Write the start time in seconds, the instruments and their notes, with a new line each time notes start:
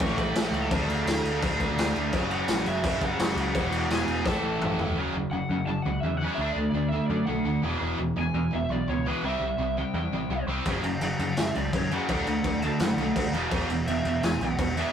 Already playing: distorted electric guitar A2 E3 A3
0.00 picked electric bass A1, distorted electric guitar A2 E3 A3, lead electric guitar C#6, kick, crash
0.18 picked electric bass A1, lead electric guitar B5, kick, crash
0.34 picked electric bass A1, snare, crash
0.51 picked electric bass C#2, lead electric guitar A5, crash
0.70 picked electric bass D2, distorted electric guitar D3 A3 D4, kick, crash
0.88 picked electric bass D2, crash
1.05 picked electric bass D2, snare, crash
1.23 picked electric bass D2, crash
1.40 picked electric bass D2, distorted electric guitar D3 A3 D4, kick, crash
1.59 picked electric bass D2, kick, crash
1.77 picked electric bass D2, snare, crash
1.95 picked electric bass D2, crash
2.12 picked electric bass F#1, distorted electric guitar F#2 C#3 F#3, kick, crash
2.31 lead electric guitar F#5, crash
2.48 picked electric bass A1, snare, crash
2.66 picked electric bass F#1, lead electric guitar E5, crash
2.83 picked electric bass F#1, distorted electric guitar F#2 C#3 F#3, kick, crash
3.01 picked electric bass F#1, lead electric guitar F#5, kick, crash
3.18 picked electric bass F#1, snare, crash
3.36 picked electric bass C#2, crash
3.40 lead electric guitar F#5
3.54 picked electric bass E1, distorted electric guitar E2 B2 E3, kick, crash
3.70 picked electric bass E1, crash
3.89 picked electric bass E1, snare, crash
3.94 lead electric guitar G#5
4.06 picked electric bass E1, crash
4.25 picked electric bass A1, distorted electric guitar A2 E3 A3, lead electric guitar A5, kick, snare
4.43 picked electric bass A1
4.60 picked electric bass A1, mid tom
4.78 picked electric bass E1, floor tom
4.96 picked electric bass F#1, distorted electric guitar F#2 C#3 F#3
5.13 picked electric bass F#1, distorted electric guitar F#2 C#3
5.31 picked electric bass F#1, distorted electric guitar F#2 C#3, lead electric guitar F#5
5.49 picked electric bass F#2, distorted electric guitar F#2 C#3
5.66 picked electric bass F#1, distorted electric guitar F#2 C#3, lead electric guitar A5
5.82 picked electric bass C#2, distorted electric guitar F#2 C#3, lead electric guitar F#5
6.00 picked electric bass E2, distorted electric guitar F#2, lead electric guitar E5
6.05 distorted electric guitar C#3
6.17 lead electric guitar F#5
6.23 distorted electric guitar F#2 C#3 F#3
6.34 picked electric bass D2, lead electric guitar E5
6.40 distorted electric guitar D3 A3 D4
6.53 picked electric bass D2, lead electric guitar D5
6.58 distorted electric guitar D3 A3
6.70 picked electric bass D2, lead electric guitar D5
6.75 distorted electric guitar D3 A3
6.89 lead electric guitar E5
6.93 distorted electric guitar D3 A3
7.06 picked electric bass F#2, distorted electric guitar D3 A3, lead electric guitar D5
7.26 picked electric bass B1, distorted electric guitar D3 A3, lead electric guitar F#5
7.45 picked electric bass D2, distorted electric guitar D3 A3
7.63 picked electric bass E1, distorted electric guitar E2 B2 E3
7.79 picked electric bass E1, distorted electric guitar E2 B2 E3
7.98 picked electric bass E1, distorted electric guitar E2 B2
8.16 picked electric bass E1, distorted electric guitar E2 B2, lead electric guitar G#5
8.34 picked electric bass E2, distorted electric guitar E2 B2
8.53 picked electric bass E1, distorted electric guitar E2 B2, lead electric guitar E5
8.70 picked electric bass B1, distorted electric guitar E2 B2, lead electric guitar D5
8.88 picked electric bass C#2, distorted electric guitar E2 B2, lead electric guitar C#5
9.06 distorted electric guitar E2 B2 E3, lead electric guitar B4
9.23 picked electric bass C2, distorted electric guitar C3 G3 C4, lead electric guitar E5
9.40 picked electric bass C2, distorted electric guitar C3 G3
9.58 picked electric bass C2, distorted electric guitar C3 G3
9.78 distorted electric guitar C3 G3, lead electric guitar G5
9.94 picked electric bass E2, distorted electric guitar C3 G3, lead electric guitar G5
10.12 picked electric bass A1, distorted electric guitar C3 G3
10.29 picked electric bass C2, distorted electric guitar C3 G3
10.47 picked electric bass C2, distorted electric guitar C3 G3 C4
10.65 picked electric bass F#1, distorted electric guitar F#2 C#3 F#3, kick, crash
10.83 picked electric bass F#1, distorted electric guitar F#2 C#3, crash
11.01 picked electric bass F#1, distorted electric guitar F#2 C#3, lead electric guitar F#5, crash
11.19 picked electric bass F#2, distorted electric guitar F#2 C#3, crash
11.37 picked electric bass F#1, distorted electric guitar F#2 C#3, lead electric guitar E5, snare, crash
11.55 picked electric bass C#2, distorted electric guitar F#2 C#3, lead electric guitar D5, crash
11.73 picked electric bass F#2, distorted electric guitar F#2 C#3, lead electric guitar C#5, kick, crash
11.91 distorted electric guitar F#2 C#3 F#3, lead electric guitar F#5, crash
12.09 picked electric bass D2, distorted electric guitar D3 A3 D4, lead electric guitar F#5, kick, crash
12.26 picked electric bass D2, distorted electric guitar D3 A3, crash
12.44 picked electric bass D2, distorted electric guitar D3 A3, kick, crash
12.62 distorted electric guitar D3 A3, lead electric guitar A5, crash
12.79 picked electric bass F#2, distorted electric guitar D3 A3, lead electric guitar F#5, snare, crash
12.97 picked electric bass B1, distorted electric guitar D3 A3, crash
13.16 picked electric bass D2, distorted electric guitar D3 A3, kick, crash
13.32 picked electric bass E1, distorted electric guitar E2 B2 E3, crash
13.51 picked electric bass E1, distorted electric guitar E2 B2 E3, kick, crash
13.69 picked electric bass E1, distorted electric guitar E2 B2, crash
13.87 picked electric bass E1, distorted electric guitar E2 B2, lead electric guitar E5, crash
14.05 picked electric bass E2, distorted electric guitar E2 B2, crash
14.23 picked electric bass E1, distorted electric guitar E2 B2, lead electric guitar G#5, snare, crash
14.40 picked electric bass B1, distorted electric guitar E2 B2, lead electric guitar F#5, crash
14.58 picked electric bass E2, distorted electric guitar E2 B2, kick, crash
14.77 distorted electric guitar E2 B2 E3, lead electric guitar E5, crash